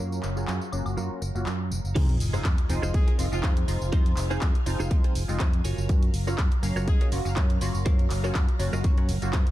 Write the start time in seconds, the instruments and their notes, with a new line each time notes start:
Already playing: string machine F#3 F5 A#5
0.00 fingered electric bass F#2, analog polysynth F#3 A#3 C#4 F5, clean electric guitar F4 F#4 A#4
0.12 tambourine
0.23 fingered electric bass F#1, clap, tambourine
0.36 analog polysynth F#3 A#3 C#4 F4 F#4, clean electric guitar F4 F#4 G#4, tambourine
0.47 fingered electric bass F#2, clap, tambourine
0.61 tambourine
0.72 fingered electric bass F#1, analog polysynth F#3 A#3 C#4 F4 F#4, tambourine, high woodblock
0.86 fingered electric bass F#1, tambourine, high woodblock
0.97 fingered electric bass F#2, analog polysynth F#3 A#3 C#4 F4 F#4, clean electric guitar F4 F#4 A#4, tambourine
1.11 muted fingered electric bass stroke
1.22 fingered electric bass F#1, muted clean electric guitar stroke, tambourine
1.35 fingered electric bass F#1, analog polysynth F#3 A#3 C#4 F4 F#4, muted clean electric guitar stroke, tambourine
1.46 fingered electric bass F#2, clap, tambourine
1.71 fingered electric bass F#1, tambourine
1.84 fingered electric bass F#1, tambourine
1.95 fingered electric bass F2, analog polysynth F3 G#3 C4 D#4 F4, clean electric guitar D#4 F4 G#4 C5, string machine F4 D#5 G#5, kick, closed hi-hat, crash, tambourine, sub drop
2.09 closed hi-hat
2.20 fingered electric bass F1, open hi-hat, tambourine
2.33 analog polysynth F3 G#3 C4 D#4 F4, clean electric guitar D#4 F4 G#4 C5, tambourine
2.44 fingered electric bass F2, kick, clap, closed hi-hat, tambourine
2.58 muted clean electric guitar stroke, closed hi-hat
2.69 fingered electric bass F1, analog polysynth F3 G#3 C4 D#4 F4, open hi-hat, tambourine
2.82 fingered electric bass F1, clean electric guitar D#4 F4 G#4 C5, tambourine
2.94 fingered electric bass F2, horn section G#3 G#4, kick, closed hi-hat, tambourine
3.07 clean electric guitar D#4 F4 G#4 A#4, muted fingered electric bass stroke, closed hi-hat
3.18 fingered electric bass F1, analog polysynth F3 G#3 C4 D#4 F4, open hi-hat, tambourine
3.32 fingered electric bass F1, analog polysynth F3 G#3 C4 D#4 F4, horn section F3 F4, tambourine
3.43 fingered electric bass F2, horn section F3 F4, clean electric guitar D#4 F4 G#4 C5, kick, clap, closed hi-hat, tambourine
3.57 closed hi-hat
3.68 fingered electric bass F1, analog polysynth F3 G#3 C4 D#4 F4, muted clean electric guitar stroke, open hi-hat, tambourine
3.81 fingered electric bass F1, tambourine
3.92 fingered electric bass F2, analog polysynth F3 G#3 C4 D#4 F4, clean electric guitar D#4 F4 G#4 C5, string machine F5, kick, closed hi-hat, tambourine
4.06 closed hi-hat
4.17 fingered electric bass F1, clap, open hi-hat, tambourine
4.30 analog polysynth F3 G#3 C4 D#4 G#4, clean electric guitar D#4 F4 G#4 C5, tambourine
4.41 fingered electric bass F2, kick, clap, closed hi-hat, tambourine
4.55 muted clean electric guitar stroke, closed hi-hat
4.66 fingered electric bass F1, analog polysynth F3 G#3 C4 D#4 F4, open hi-hat, tambourine
4.80 fingered electric bass F1, clean electric guitar D#4 F4 G#4 C5, tambourine
4.90 fingered electric bass F2, analog polysynth F3 G#3 C4 D#4 F4, kick, closed hi-hat, tambourine
5.04 clean electric guitar D#4 F4 G#4 C5, closed hi-hat
5.15 fingered electric bass F1, open hi-hat, tambourine
5.28 fingered electric bass F1, analog polysynth F3 G#3 C4 D#4 F4, tambourine
5.40 fingered electric bass F2, clean electric guitar D#4 F4 G#4 C5 D#5, kick, clap, closed hi-hat, tambourine
5.53 closed hi-hat
5.64 fingered electric bass F#1, string machine F#3 F5 A#5, clean electric guitar F4 F#4 A#4 C#5 G#5, open hi-hat, tambourine
5.78 fingered electric bass F#1, tambourine
5.89 fingered electric bass F#2, analog polysynth F#3 A#3 C#4 F4 F#4, kick, closed hi-hat, tambourine
6.03 closed hi-hat
6.14 fingered electric bass F#1, open hi-hat, tambourine
6.27 analog polysynth F#3 A#3 C#4 F4 F#4, clean electric guitar F4 F#4 A#4 C#5, tambourine
6.38 fingered electric bass F#2, kick, clap, closed hi-hat, tambourine
6.52 muted clean electric guitar stroke, closed hi-hat
6.63 fingered electric bass F#1, analog polysynth F#3 A#3 C#4 F5, open hi-hat, tambourine
6.76 fingered electric bass F#1, clean electric guitar F4 F#4 A#4 C#5, tambourine
6.88 fingered electric bass F#2, horn section G#3 G#4, kick, closed hi-hat, tambourine
7.01 clean electric guitar F4 F#4 A#4 C#5, closed hi-hat
7.12 fingered electric bass F#1, analog polysynth F#3 A#3 C#4 F4 F#4, open hi-hat, tambourine
7.25 fingered electric bass F#1, analog polysynth F#3 A#3 C#4 F5, tambourine
7.36 fingered electric bass F#2, clean electric guitar F4 F#4 A#4 C#5, kick, clap, closed hi-hat
7.50 closed hi-hat
7.61 fingered electric bass F#1, analog polysynth F#3 A#3 C#4 F4 F#4, muted clean electric guitar stroke, open hi-hat, tambourine
7.74 fingered electric bass F#1, tambourine
7.86 fingered electric bass F#2, analog polysynth F#3 A#3 C#4 F5, clean electric guitar F4 F#4 A#4 C5, kick, closed hi-hat, tambourine
7.99 closed hi-hat
8.10 fingered electric bass F#1, clap, open hi-hat, tambourine
8.23 analog polysynth F#3 A#3 C#4 F4 F#4, clean electric guitar F4 F#4 A#4 C#5, tambourine
8.35 fingered electric bass F#2, kick, clap, closed hi-hat, tambourine
8.48 muted clean electric guitar stroke, closed hi-hat
8.59 fingered electric bass F#1, analog polysynth F#3 A#3 C#4 F4 F#4, open hi-hat, tambourine
8.73 fingered electric bass F#1, clean electric guitar F4 F#4 A#4 D#5, tambourine
8.84 fingered electric bass F#2, analog polysynth F#3 A#3 C#4 F4 F#4, kick, closed hi-hat, tambourine
8.98 clean electric guitar F4 F#4 A#4 C#5, closed hi-hat
9.09 fingered electric bass F#1, open hi-hat, tambourine
9.22 fingered electric bass F#1, analog polysynth F#3 A#3 C#4 F4 F#4, closed hi-hat, tambourine
9.33 fingered electric bass F#2, clean electric guitar F4 F#4 A#4 C5, kick, clap, closed hi-hat, tambourine
9.47 closed hi-hat